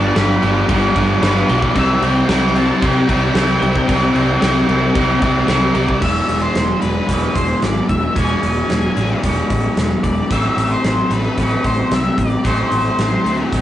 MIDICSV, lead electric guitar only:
0, 0, Header, 1, 2, 480
1, 0, Start_track
1, 0, Tempo, 534759
1, 1577, Time_signature, 4, 2, 24, 8
1, 12219, End_track
2, 0, Start_track
2, 0, Title_t, "Lead electric guitar"
2, 0, Program_c, 0, 29
2, 0, Note_on_c, 0, 81, 97
2, 144, Note_on_c, 0, 83, 97
2, 155, Note_off_c, 0, 81, 0
2, 366, Note_off_c, 0, 83, 0
2, 1110, Note_on_c, 0, 71, 94
2, 1327, Note_off_c, 0, 71, 0
2, 1347, Note_on_c, 0, 74, 92
2, 1589, Note_off_c, 0, 74, 0
2, 1592, Note_on_c, 0, 76, 105
2, 1831, Note_off_c, 0, 76, 0
2, 1832, Note_on_c, 0, 79, 103
2, 2310, Note_off_c, 0, 79, 0
2, 2313, Note_on_c, 0, 81, 98
2, 2540, Note_off_c, 0, 81, 0
2, 2543, Note_on_c, 0, 79, 99
2, 4894, Note_off_c, 0, 79, 0
2, 5163, Note_on_c, 0, 74, 76
2, 5401, Note_off_c, 0, 74, 0
2, 5404, Note_on_c, 0, 76, 85
2, 5739, Note_off_c, 0, 76, 0
2, 5759, Note_on_c, 0, 72, 81
2, 6110, Note_off_c, 0, 72, 0
2, 6113, Note_on_c, 0, 71, 70
2, 6343, Note_off_c, 0, 71, 0
2, 6354, Note_on_c, 0, 71, 81
2, 6589, Note_off_c, 0, 71, 0
2, 6593, Note_on_c, 0, 72, 76
2, 6845, Note_on_c, 0, 74, 85
2, 6846, Note_off_c, 0, 72, 0
2, 7077, Note_off_c, 0, 74, 0
2, 7080, Note_on_c, 0, 76, 83
2, 7319, Note_on_c, 0, 80, 91
2, 7330, Note_off_c, 0, 76, 0
2, 8248, Note_off_c, 0, 80, 0
2, 9007, Note_on_c, 0, 74, 86
2, 9256, Note_off_c, 0, 74, 0
2, 9262, Note_on_c, 0, 76, 104
2, 9611, Note_on_c, 0, 72, 89
2, 9627, Note_off_c, 0, 76, 0
2, 9979, Note_off_c, 0, 72, 0
2, 9983, Note_on_c, 0, 71, 81
2, 10223, Note_off_c, 0, 71, 0
2, 10234, Note_on_c, 0, 71, 85
2, 10458, Note_off_c, 0, 71, 0
2, 10461, Note_on_c, 0, 72, 83
2, 10706, Note_off_c, 0, 72, 0
2, 10716, Note_on_c, 0, 76, 93
2, 10935, Note_off_c, 0, 76, 0
2, 10938, Note_on_c, 0, 74, 81
2, 11182, Note_on_c, 0, 72, 72
2, 11185, Note_off_c, 0, 74, 0
2, 12108, Note_off_c, 0, 72, 0
2, 12219, End_track
0, 0, End_of_file